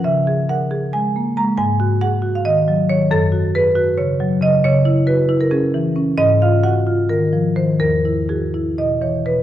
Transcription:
marimba
0.04 C#3 E5
0.27 G#4
0.49 A#4 F#5
0.71 G#4
0.93 G#3 G#5
1.16 A#3
1.37 G#3 A#5
1.58 G#2 G#5
1.80 F#4
2.01 G#4 F#5
2.22 F#4
2.35 F5
2.45 D#3 D#5
2.68 F#3
2.89 D#3 C#5
3.11 F#2 A4
3.32 F#4
3.55 G#4 B4
3.76 F#4
3.98 C#3 C#5
4.20 F#3
4.41 C#3 D#5
4.64 C#3 C#5
4.85 E4
5.07 F#4 B4
5.29 E4
5.41 A#4
5.51 C#4 G#4
5.74 E3
5.96 C#4
6.18 G#2 D#5
6.42 F4 F5
6.63 F#4 F#5
6.87 F4
7.09 D#3 A#4
7.33 F3
7.56 D#3 C5
7.80 E2 A#4
8.05 E4
8.29 F#4 G#4
8.54 E4
8.78 B2 D#5
9.01 E3 C#5
9.25 B2 B4

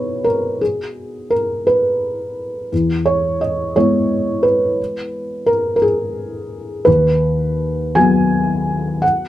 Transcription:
felt piano
Already playing: B2 B3 D#4 F#4 B4 C#5
0.24 A#4
0.61 G#4
1.30 A#4
1.67 B4
2.72 E2
3.06 C#5
3.41 D#5
3.76 G#3 B3 E4 C#5
4.43 B4
5.46 A#4
5.76 A#4
5.82 G#4
6.85 D#2 B4
7.95 F#3 B3 F#4 G#5
9.02 F#5

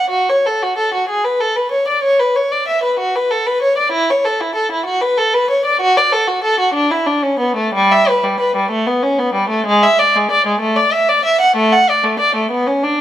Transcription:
violin
Already playing: F#5
0.10 F#4
0.29 C#5
0.46 A4
0.62 F#4
0.78 A4
0.94 F#4
1.09 G#4
1.24 B4
1.40 A4
1.56 B4
1.71 C#5
1.88 D5
2.03 C#5
2.19 B4
2.36 C#5
2.51 D5
2.68 E5
2.83 B4
2.99 F#4
3.15 B4
3.31 A4
3.46 B4
3.62 C#5
3.77 D5
3.92 E4
4.10 C#5
4.25 A4
4.41 E4
4.55 A4
4.72 E4
4.86 F#4
5.01 B4
5.17 A4
5.34 B4
5.50 C#5
5.65 D5
5.81 F#4
5.97 D5
6.12 A4
6.27 F#4
6.44 A4
6.60 F#4
6.74 D4
6.91 E4
7.06 D4
7.22 C#4
7.39 B3
7.56 A3
7.74 G3
7.92 E5
8.08 B4
8.23 G3
8.40 B4
8.56 G3
8.71 A3
8.87 B3
9.03 C#4
9.19 B3
9.34 G3
9.49 A3
9.66 G#3
9.83 E5
9.99 D5
10.16 G#3
10.31 D5
10.46 G#3
10.60 A3
10.76 D5
10.93 E5
11.08 D5
11.25 E5
11.41 F#5
11.56 A3
11.72 F#5
11.89 D5
12.04 A3
12.19 D5
12.35 A3
12.51 B3
12.67 C#4
12.83 D4

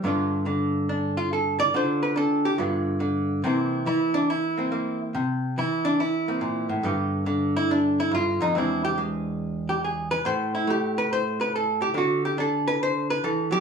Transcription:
hollow-body jazz guitar
0.04 G2 D3 B3 D4 F4
0.46 D3
0.89 D4
1.17 F4
1.33 A4
1.60 D5
1.74 D3 D4 F4 C5
2.03 B4
2.16 D4 A4
2.45 G4
2.58 G2 D3 B3 F4
3.00 D3
3.44 C3 E3 A#3 C4 E4
3.86 E3 E4
4.14 D4
4.30 E4
4.58 A#3 C4
4.72 A#3
5.15 C3
5.58 E3 E4
5.85 D4
6.00 E4
6.28 A#3 C4
6.41 A#2
6.69 A2
6.83 G2 D3 B3 G4
7.26 D3
7.57 E4
7.71 D4
8.00 E4
8.11 G2 F4
8.41 F2 D#4
8.55 E2 G#3 C4 D4 E4
8.85 G4
8.98 G#3
9.69 G4
9.84 G#4
10.11 B4
10.25 A2 C5
10.55 E4
10.67 A3 G4
10.98 B4
11.13 C5
11.41 B4
11.56 A4
11.82 G4
11.94 D3 D4 F#4
12.25 G4
12.38 D4 A4
12.68 B4
12.83 C5
13.10 B4
13.24 E3 A4
13.51 F#3 G4

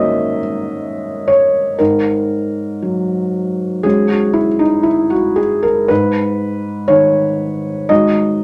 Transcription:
felt piano
Already playing: G#2 D#3 A#3 C#4 F#4 C#5 D#5 E5
1.28 C#5
1.79 G#2 A#4
2.82 F#3
3.83 G#3 C#4 F#4 G#4
4.09 F#4
4.33 E4
4.59 D#4
4.83 E4
5.10 F#4
5.36 G#4
5.63 A#4
5.88 G#2 B4
6.88 D#3 C#5
7.89 G#3 D#4 F#4 D#5

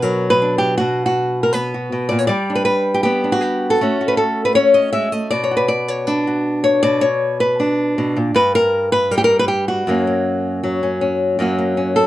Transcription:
nylon-string guitar
Already playing: B2 B3 D4
0.02 F#3 A#4
0.30 B4
0.42 D4
0.58 G4
0.78 B2 F#4
1.06 F#4
1.43 A#4
1.53 B3 B4
1.74 F#4
1.92 B2
2.09 A#2 D5
2.19 C#5
2.27 G3 D5
2.50 D4
2.55 B4
2.65 B4
2.94 G4
3.03 B3 G4
3.24 D4
3.32 F#4
3.41 G4
3.70 A4
3.81 A3 C#4 F#4
4.01 F#4
4.08 B4
4.17 A4
4.45 B4
4.55 C#4 C#5
4.74 D#5
4.93 G#3 E5
5.12 A3 D#5
5.31 B2 D5
5.44 C#5
5.51 F#4
5.57 B4
5.68 D5
5.88 C#5
6.07 D4 B4
6.27 F#4
6.64 C#5
6.83 B2 D5
7.01 C#5
7.40 B4
7.60 D4
7.98 B2
8.16 A#2
8.34 G2 B4
8.55 A#4
8.92 B4
9.11 G3 A#4
9.18 G4
9.24 A#4
9.39 B4
9.48 G4
9.68 F#4
9.87 F#2 F#3 A#3 C#4
10.07 A#3
10.63 F#3
10.83 C#4
11.01 C#4
11.39 F#2 F#3 A#3 C#4 F#4
11.58 A#3
11.77 C#4
11.96 A4

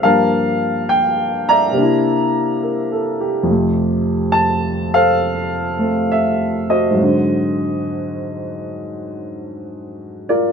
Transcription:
upright piano
0.03 G2 F3 G3 A#3 A#4 F5 A5
0.89 G5
1.49 D5 E5 A#5
1.71 C3 A#3
1.78 D4 E4
2.63 A#4
2.92 A4
3.20 G4
3.43 F2 C3
3.50 A3
4.32 A5
4.94 A4 C5 F5
5.79 A3 C4 A4
6.12 E5
6.70 F#4 C5 D#5
6.91 G#2 F#3
6.98 C4
7.02 D3
10.29 F4 A#4 D5

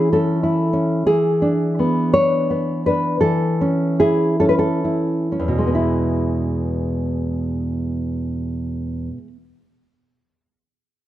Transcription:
nylon-string guitar
Already playing: E3 C#4 E4 G#4
0.13 C#4 A4
0.43 E4
0.73 C#4
1.07 E3 G#4
1.42 D4
1.79 B3
2.14 D4 C#5
2.50 B3
2.86 D4 B4
3.21 E3 A4
3.61 C#4
4.00 E4 G#4
4.40 C#4 A4
4.49 B4
4.59 A4
4.84 E4
5.32 C#4
5.40 E2
5.48 B2
5.58 G#3
5.67 B3
5.75 E4

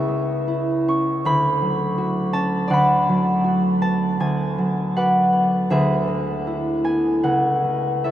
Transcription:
harp
Already playing: C#2 E4 G#4 C#5 E5
0.08 G#3
0.48 E4
0.88 C#4 C#6
1.25 D2 B5
1.62 F#3
1.98 F#4
2.33 C#4 A5
2.68 D2 D5 F#5
2.73 B5
3.09 F#3
3.44 F#4
3.81 B3 A5
4.20 D2 G#5
4.58 F#3
4.96 F#4 B4 D5 F#5
5.33 B3
5.70 D2 G#4 B4 E5
6.08 G#3
6.47 E4
6.84 B3 G#5
7.23 C#2 F#5
7.64 A3
8.04 E4 A4 C#5 E5

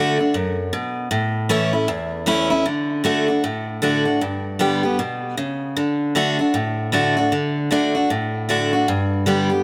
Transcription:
steel-string acoustic guitar
Already playing: D3 A3 D4 F#4
0.19 D4 F#4
0.34 F#2
0.73 B2
1.11 A2
1.49 E3 A3 C#4 E4
1.73 C#4 E4
1.88 E2
2.26 E3 A3 C#4 E4
2.50 C#4 E4
2.66 D3
3.04 D3 A3 D4 F#4
3.28 D4 F#4
3.44 A2
3.82 D3 A3 D4 F#4
4.05 D4 F#4
4.21 G2
4.59 D3 G3 B3 G4
4.83 B3 G4
4.99 B2
5.37 C#3
5.77 D3
6.15 D3 A3 D4 F#4
6.39 D4 F#4
6.54 A2
6.92 D3 A3 D4 F#4
7.17 D4 F#4
7.32 D3
7.71 D3 A3 D4 F#4
7.95 D4 F#4
8.10 A2
8.49 D3 A3 D4 F#4
8.73 D4 F#4
8.88 G2
9.26 D3 G3 B3 G4
9.50 B3 G4

